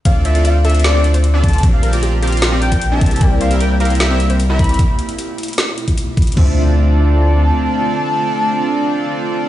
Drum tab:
CC |--------------------------------|--------------------------------|--------------------------------|--------------------------------|
HH |x---x-x-x---xxxxx---x-x-x---xxxx|x---x-x-x---xxxxx---x-x-x---xxxx|x---x-x-x---xxxxx---x-x-x---xxxx|x---x-x-x---xxxxx---x-x-x---xxxx|
SD |----------------o---------------|----------------o---------------|----------------o---------------|----------------o---------------|
BD |o---------------------------o---|o---------------------o-----o---|o---------------------------o---|o---------------------o-----o---|

CC |x-------------------------------|--------------------------------|
HH |--------------------------------|--------------------------------|
SD |--------------------------------|--------------------------------|
BD |o-------------------------------|--------------------------------|